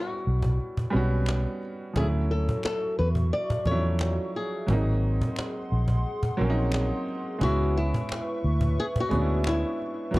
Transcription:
0.00 0.12 G3 medium
0.00 0.13 B3 medium
0.00 0.14 C#4 medium
0.00 0.15 E4 medium
0.00 1.25 F#4 medium
0.27 0.58 B1 medium
0.27 cajon slap soft
0.42 cajon bass medium
0.60 cajon slap soft
0.77 cajon bass medium
0.90 1.58 G3 medium
0.90 1.59 B3 medium
0.94 1.45 B1 medium
0.94 1.60 C#4 medium
0.94 1.61 F#4 medium
0.94 cajon slap soft
1.26 finger snap medium
1.26 cajon slap loud
1.63 cajon slap soft
1.93 2.47 D2 loud
1.93 2.02 F3 medium
1.93 2.85 A3 medium
1.93 4.66 F#4 medium
1.93 2.06 G#4 medium
1.93 4.66 E5 medium
1.93 4.66 C#6 medium
1.93 cajon bass loud
1.98 2.87 F#3 medium
1.98 2.86 C#4 medium
1.98 2.87 E4 medium
2.31 2.62 A4 medium
2.31 cajon slap soft
2.49 cajon bass medium
2.63 2.98 A4 medium
2.63 finger snap medium
2.63 cajon slap loud
2.99 3.31 E2 medium
2.99 3.08 B4 medium
2.99 cajon slap soft
3.15 cajon bass medium
3.33 3.67 D5 loud
3.33 cajon slap soft
3.50 cajon bass medium
3.65 4.17 E2 medium
3.65 3.73 F3 medium
3.65 4.32 A3 medium
3.65 4.36 C#5 loud
3.65 cajon bass medium
3.69 4.35 F#3 medium
3.69 4.33 C#4 medium
3.69 4.34 E4 medium
3.99 finger snap medium
3.99 cajon slap loud
4.35 5.00 G#4 medium
4.35 cajon slap soft
4.67 5.20 G#1 loud
4.67 5.57 F#3 medium
4.67 5.58 A#3 medium
4.67 7.38 G#4 medium
4.67 7.38 F#5 medium
4.67 7.38 C6 medium
4.67 cajon bass loud
4.71 5.59 C4 medium
4.71 5.60 D#4 medium
5.04 cajon slap soft
5.21 cajon bass medium
5.36 finger snap medium
5.36 cajon slap loud
5.72 6.04 A#1 medium
5.72 cajon slap soft
5.88 cajon bass medium
6.05 cajon slap soft
6.23 cajon bass medium
6.37 6.91 A#1 medium
6.37 7.04 F#3 medium
6.37 7.05 A#3 medium
6.37 cajon slap soft
6.41 7.06 C4 medium
6.41 6.49 C#4 medium
6.50 7.10 D#4 loud
6.72 finger snap medium
6.72 cajon slap loud
7.08 cajon slap soft
7.39 7.93 C#2 loud
7.39 8.30 G#3 medium
7.39 8.31 B3 medium
7.39 10.12 B4 medium
7.39 10.12 E5 medium
7.39 10.12 C#6 medium
7.39 cajon bass loud
7.43 8.32 C#4 medium
7.43 8.33 E4 medium
7.43 7.77 F#4 loud
7.77 8.82 E4 medium
7.94 cajon bass medium
8.09 finger snap medium
8.09 cajon slap loud
8.44 8.76 D2 medium
8.44 cajon slap soft
8.61 cajon bass medium
8.79 8.85 G#4 loud
8.79 cajon slap soft
8.96 cajon bass loud
9.00 9.49 F#4 medium
9.09 9.63 D2 medium
9.09 9.76 G#3 medium
9.09 9.77 B3 medium
9.09 9.78 C#4 medium
9.09 cajon bass medium
9.15 9.21 D4 medium
9.21 9.82 E4 medium
9.44 finger snap medium
9.44 cajon slap loud
9.48 10.17 E4 medium
9.82 cajon slap soft
10.11 10.19 G#1 loud
10.11 10.19 F#3 medium
10.11 10.19 A#3 medium
10.11 10.19 G#4 medium
10.11 10.19 F#5 medium
10.11 cajon bass loud
10.15 10.19 B3 medium

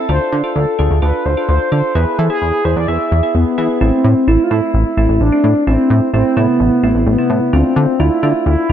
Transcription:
0.09 0.19 D2 loud
0.09 0.40 D4 medium
0.09 0.40 F4 medium
0.09 0.40 A4 medium
0.09 0.41 C5 loud
0.32 0.42 D3 medium
0.44 0.74 D4 medium
0.44 0.75 F4 medium
0.44 0.74 A4 medium
0.44 0.49 C5 medium
0.55 0.66 D2 loud
0.55 0.99 A4 medium
0.79 0.89 D2 loud
0.79 0.99 D4 medium
0.79 0.99 F4 medium
0.79 0.99 G#4 medium
0.91 1.01 D2 loud
1.02 1.12 D2 loud
1.02 1.33 D4 medium
1.02 1.33 F4 medium
1.02 1.33 A4 medium
1.02 1.27 B4 medium
1.25 1.35 D2 medium
1.25 1.48 C5 medium
1.37 1.68 D4 medium
1.37 1.68 F4 medium
1.37 1.68 A4 medium
1.49 1.59 D2 loud
1.49 1.70 C5 loud
1.72 1.82 D3 medium
1.72 1.92 D4 medium
1.72 1.92 F4 medium
1.72 1.92 A4 medium
1.72 1.97 C5 medium
1.95 2.05 E2 loud
1.95 2.26 B3 medium
1.95 2.26 E4 medium
1.95 2.26 G#4 medium
1.95 2.20 B4 loud
2.19 2.29 E3 loud
2.19 2.29 A4 medium
2.30 2.61 B3 medium
2.30 2.61 E4 medium
2.30 2.61 G#4 medium
2.30 2.66 G#4 loud
2.42 2.52 E2 loud
2.65 2.75 E2 medium
2.65 2.85 B3 medium
2.65 2.85 E4 medium
2.65 2.85 G#4 medium
2.65 2.76 C5 medium
2.76 2.87 E2 loud
2.76 2.90 D5 loud
2.88 2.98 E2 loud
2.88 3.19 B3 medium
2.88 3.19 E4 medium
2.88 3.19 G#4 medium
2.88 3.34 E5 loud
3.12 3.22 E2 loud
3.23 3.54 B3 medium
3.23 3.54 E4 medium
3.23 3.54 G#4 medium
3.35 3.45 E2 medium
3.35 3.83 B3 medium
3.58 3.68 E3 medium
3.58 3.78 B3 medium
3.58 3.78 E4 medium
3.58 3.78 G#4 medium
3.81 3.91 A1 loud
3.81 4.22 A3 medium
3.81 4.22 C4 medium
3.81 4.29 C4 loud
3.81 4.22 E4 medium
4.04 4.14 A2 loud
4.28 4.38 A1 loud
4.28 4.48 A3 medium
4.28 4.48 C4 medium
4.28 4.48 E4 medium
4.28 4.43 E4 loud
4.44 4.53 F4 medium
4.51 4.61 A2 loud
4.51 4.92 A3 medium
4.51 4.92 C4 medium
4.51 4.92 E4 medium
4.51 5.20 E4 loud
4.74 4.84 A1 loud
4.97 5.07 A1 loud
4.97 5.28 A3 medium
4.97 5.28 C4 medium
4.97 5.28 E4 medium
5.09 5.19 A1 loud
5.21 5.31 A1 loud
5.21 5.64 D4 loud
5.32 5.63 A3 medium
5.32 5.63 C4 medium
5.32 5.63 D4 medium
5.44 5.54 A2 loud
5.67 5.77 A1 loud
5.67 6.08 A3 medium
5.67 6.11 C4 loud
5.67 6.08 C4 medium
5.67 6.08 E4 medium
5.90 6.00 A2 loud
6.14 6.24 A1 loud
6.14 6.34 A3 medium
6.14 6.34 C4 medium
6.14 6.35 C4 medium
6.14 6.34 E4 medium
6.37 6.47 A2 loud
6.37 6.78 C3 medium
6.37 6.78 A3 medium
6.37 7.03 B3 loud
6.37 6.78 E4 medium
6.60 6.70 A1 loud
6.83 6.93 A1 loud
6.83 7.14 A3 medium
6.83 7.14 C4 medium
6.83 7.14 E4 medium
6.95 7.05 A1 loud
7.07 7.17 A1 loud
7.07 7.55 B3 medium
7.18 7.49 C3 medium
7.18 7.49 A3 medium
7.18 7.49 E4 medium
7.30 7.40 A2 loud
7.53 7.63 D2 loud
7.53 7.94 A3 medium
7.53 8.01 C4 loud
7.53 7.94 D4 medium
7.53 7.94 F4 medium
7.76 7.86 D3 loud
7.99 8.10 D2 loud
7.99 8.20 A3 medium
7.99 8.20 D4 medium
7.99 8.45 E4 loud
7.99 8.20 F4 medium
8.23 8.33 D3 loud
8.23 8.64 A3 medium
8.23 8.64 D4 medium
8.23 8.64 F4 medium
8.46 8.56 D2 loud
8.46 8.72 E4 loud
8.69 8.72 D4 medium

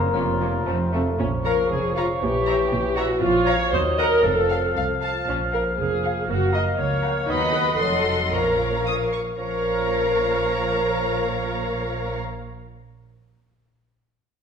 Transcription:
0.00 0.15 A#3 medium
0.00 0.63 A#3 medium
0.00 0.15 A#4 medium
0.00 0.68 C#5 medium
0.00 0.13 A#5 medium
0.14 0.61 F1 soft
0.14 0.61 F2 medium
0.14 0.93 F3 medium
0.14 0.22 F3 soft
0.14 0.23 A#3 soft
0.14 0.23 C#4 soft
0.14 0.92 F4 medium
0.14 0.93 F4 medium
0.14 0.89 F6 medium
0.41 0.49 F3 soft
0.41 0.49 A#3 soft
0.41 0.49 C#4 soft
0.66 1.14 F1 soft
0.66 1.14 F2 soft
0.66 0.75 F3 soft
0.66 0.74 A3 soft
0.66 0.92 C4 medium
0.66 0.76 C4 soft
0.66 0.93 C5 soft
0.94 1.02 F3 soft
0.94 1.19 A3 soft
0.94 1.02 A3 soft
0.94 1.03 C4 soft
1.19 1.60 A#1 medium
1.19 1.60 A#2 medium
1.19 2.17 F3 soft
1.19 2.23 F3 medium
1.19 3.17 C#4 soft
1.19 1.28 C#4 medium
1.19 1.32 C#4 medium
1.19 3.17 C#5 medium
1.45 1.70 A#4 medium
1.45 1.57 A#4 medium
1.45 1.53 C#5 soft
1.45 1.53 F5 soft
1.45 1.53 A#5 soft
1.70 2.11 F1 medium
1.70 2.11 F2 medium
1.70 1.95 G#4 medium
1.70 1.96 G#4 medium
1.96 2.04 F4 medium
1.96 2.07 F4 medium
1.96 2.04 C#5 soft
1.96 2.04 F5 soft
1.96 2.05 A#5 soft
2.21 2.61 A#1 medium
2.21 2.61 A#2 medium
2.21 3.19 E3 medium
2.21 3.21 E3 medium
2.21 2.95 G4 medium
2.46 2.55 C#5 soft
2.46 2.55 E5 soft
2.46 2.54 A#5 soft
2.71 3.11 A#1 medium
2.71 3.11 A#2 medium
2.97 3.08 F#4 medium
2.97 3.22 F#4 medium
2.97 3.05 C#5 soft
2.97 3.05 E5 medium
2.97 3.05 A#5 medium
3.21 3.62 A#1 medium
3.21 3.61 A#2 medium
3.21 3.72 F3 medium
3.21 3.74 F3 medium
3.21 3.71 C#4 medium
3.21 3.33 F4 medium
3.21 3.46 F4 medium
3.21 3.74 C#5 medium
3.46 3.58 C#5 medium
3.46 3.72 C#5 medium
3.46 3.55 C#5 medium
3.46 3.55 F5 medium
3.46 3.54 A#5 medium
3.72 4.13 D#2 medium
3.72 4.24 F#3 medium
3.72 4.26 F#3 medium
3.72 4.24 D#4 medium
3.72 3.97 C5 medium
3.72 3.81 C5 medium
3.72 4.25 D#5 medium
3.98 4.25 A#4 medium
3.98 4.24 A#4 medium
3.98 4.06 D#5 soft
3.98 4.06 F#5 medium
3.98 4.06 A#5 medium
4.23 4.65 F1 medium
4.23 4.65 F2 medium
4.23 6.29 F3 medium
4.23 6.25 F3 medium
4.23 5.02 C4 medium
4.23 4.76 A4 medium
4.23 4.77 A4 medium
4.23 6.29 F5 medium
4.50 4.58 F5 soft
4.50 4.59 F5 soft
4.76 5.17 C2 medium
4.76 4.85 F5 medium
5.01 5.10 F5 soft
5.01 5.27 A5 soft
5.27 5.68 A#1 medium
5.27 5.68 A#2 medium
5.27 7.25 A#3 soft
5.27 5.39 C#4 medium
5.27 5.37 C#4 medium
5.53 5.61 A#4 medium
5.53 5.65 A#4 medium
5.53 5.72 F5 soft
5.78 6.19 F1 medium
5.78 6.19 F2 medium
5.78 6.28 G#4 medium
6.04 6.23 F5 medium
6.29 6.69 F#1 medium
6.29 6.69 F#2 medium
6.29 7.27 F3 medium
6.29 7.31 A#3 medium
6.29 6.54 F#4 medium
6.29 6.41 F#4 medium
6.29 7.31 F5 medium
6.53 6.61 D#5 medium
6.53 6.81 D#5 medium
6.53 6.73 F5 soft
6.53 6.73 F#5 medium
6.53 6.72 A#5 soft
6.78 7.18 C#2 medium
6.78 7.19 C#2 medium
6.78 7.28 C#5 medium
6.78 7.29 C#5 medium
7.04 7.23 F5 medium
7.04 7.23 F#5 medium
7.04 7.23 A#5 medium
7.29 7.77 D#2 medium
7.29 8.33 F#3 medium
7.29 7.62 B3 medium
7.29 7.80 B3 medium
7.29 7.54 D#4 medium
7.29 7.41 D#4 medium
7.29 7.77 D#5 medium
7.29 8.04 D#5 medium
7.29 7.77 F#5 medium
7.29 7.76 B5 medium
7.53 7.79 B4 medium
7.53 7.66 B4 medium
7.79 8.32 F1 medium
7.79 8.32 F2 medium
7.79 8.35 F#3 medium
7.79 8.33 D#4 soft
7.79 8.32 A4 medium
7.79 8.35 A4 medium
7.79 8.32 D#5 soft
7.79 8.32 F#5 medium
7.79 8.33 C6 medium
8.32 9.18 A#1 soft
8.32 9.17 A#2 soft
8.32 9.12 F3 soft
8.32 9.13 C#4 soft
8.32 9.10 A#4 medium
8.32 9.12 A#4 medium
8.32 9.08 C#5 soft
8.32 9.18 C#5 soft
8.32 9.18 F5 soft
8.32 8.81 A#5 soft
8.86 8.94 D#6 soft
9.12 9.20 C#6 soft
9.37 12.17 A#1 medium
9.37 12.17 A#2 medium
9.37 12.17 F3 medium
9.37 12.17 F3 soft
9.37 12.16 C#4 soft
9.37 12.17 A#4 medium
9.37 12.18 C#5 medium
9.37 12.18 C#5 soft
9.37 12.18 F5 soft
9.37 12.17 A#5 soft

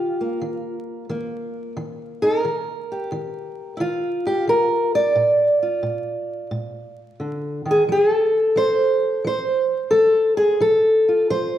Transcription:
0.00 0.37 D#3 medium
0.00 2.22 F4 medium
0.00 0.19 G4 medium
0.21 1.09 A#3 soft
0.41 1.04 D#3 medium
1.09 1.72 D#3 medium
1.09 3.76 A#3 soft
1.77 2.39 D#3 medium
2.22 2.41 D#4 soft
2.22 4.25 A#4 loud
2.45 3.07 D#3 medium
2.92 3.80 G4 soft
3.12 3.75 D#3 medium
3.77 4.43 D#3 medium
3.77 3.80 E4 medium
3.77 4.93 F4 medium
4.27 4.48 G4 medium
4.47 5.11 D#3 medium
4.47 4.94 A#4 loud
4.95 6.98 D5 loud
5.15 5.79 A#2 medium
5.63 7.68 F4 soft
5.83 6.46 A#2 medium
6.51 7.15 A#2 medium
7.20 7.65 D3 medium
7.65 7.87 D#3 medium
7.71 7.82 G#4 medium
7.88 8.52 F3 medium
7.88 8.12 G#4 medium
8.12 9.26 A4 medium
8.56 9.19 F3 medium
8.56 9.25 C5 loud
9.24 9.88 F3 medium
9.24 10.61 C5 medium
9.91 10.56 F3 medium
9.91 10.37 A4 medium
10.37 10.60 G#4 medium
10.60 11.24 F3 medium
10.60 11.29 A4 medium
11.09 11.58 F4 soft
11.30 11.58 F3 medium
11.30 11.58 C5 loud

